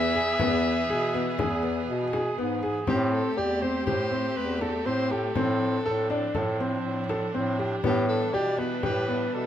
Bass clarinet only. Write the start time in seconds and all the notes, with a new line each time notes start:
Already playing: E2
0.40 E2
0.89 B2
1.40 E2
1.88 B2
2.38 G#2
2.88 A2
3.37 E2
3.87 A2
4.37 E2
4.86 A2
5.36 A2
5.86 A2
6.35 A2
6.85 A2
7.34 A2
7.84 A2
8.34 B2
8.84 A2
9.33 B2